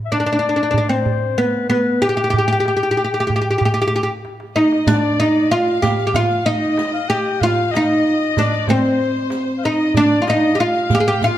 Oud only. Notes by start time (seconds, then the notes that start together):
0.12 D4
0.20 D4
0.26 D4
0.32 D4
0.39 D4
0.49 D4
0.56 D4
0.63 D4
0.71 D4
0.78 D4
0.89 C4
1.38 B3
1.70 B3
2.02 G4
2.09 G4
2.17 G4
2.24 G4
2.30 G4
2.38 G4
2.48 G4
2.52 G4
2.60 G4
2.68 G4
2.77 G4
2.83 G4
2.91 G4
2.97 G4
3.04 G4
3.14 G4
3.20 G4
3.27 G4
3.36 G4
3.42 G4
3.51 G4
3.58 G4
3.65 G4
3.74 G4
3.82 G4
3.88 G4
3.96 G4
4.03 G4
4.56 D#4
4.88 D4
5.20 D#4
5.51 F4
5.82 G4
6.07 G4
6.16 F4
6.46 D#4
7.10 G4
7.43 F4
7.76 D#4
8.39 D4
8.70 C4
9.65 D#4
9.97 D4
10.22 F4
10.30 D#4
10.55 G4
10.60 F4
10.95 G4
11.00 G#4
11.08 G4
11.24 F4